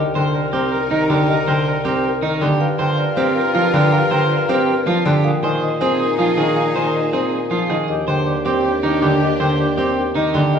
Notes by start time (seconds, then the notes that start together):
Already playing: C2 D#4 A#4 D#5
0.15 D3 A#4 C5 G5
0.34 A#4 D5
0.53 C4 G4 A#4 C5
0.72 A#4
0.91 D#3 D#4 A#4 D#5
1.10 D3 G4 A#4 D5
1.28 A#4 D#5
1.47 D3 A#4 C5 G5
1.66 A#4 D5
1.85 C4 G4 A#4 C5
2.04 A#4
2.22 D#3 D#4 A#4 D#5
2.41 D3 G4 D5
2.60 G2 F4 A#4 F5
2.79 D3 A#4 C5 G5
2.98 A#4 D5
3.16 C4 G4 A#4 C5
3.35 A#4
3.54 F3 F4 A#4 F5
3.73 D3 G4 A#4 D5
3.92 A#4 F5
4.11 D3 A#4 C5 G5
4.30 A#4 D5
4.49 C4 G4 A#4 C5
4.68 A#4
4.86 F3 F4 A#4 F5
5.05 D3 G4 D5
5.24 A#2 D#4 G#4 F5
5.43 D#3 G#4 C5 G#5
5.62 G#4 D#5
5.81 C4 G#4 C5
6.00 G#4 A#4
6.18 F3 F4 G#4 F5
6.37 D#3 G#4 D#5
6.56 G#4 F5
6.75 D#3 G#4 C5 G#5
6.94 G#4 D#5
7.13 C4 G#4 C5
7.32 G#4 A#4
7.51 F3 F4 G#4 F5
7.70 D#3 G#4 D#5
7.88 D#2 D4 G4 D#5
8.07 D3 G4 C5 G5
8.26 G4 D5
8.45 C4 G4 C5
8.64 G4 A#4
8.83 D#3 D#4 G4 D#5
9.02 D3 G4 D5
9.21 G4 D#5
9.40 D3 G4 C5 G5
9.59 G4 D5
9.77 C4 G4 C5
9.97 G4 A#4
10.15 D#3 D#4 G4 D#5
10.34 D3 G4 D5
10.53 C2 D#4 A#4 D#5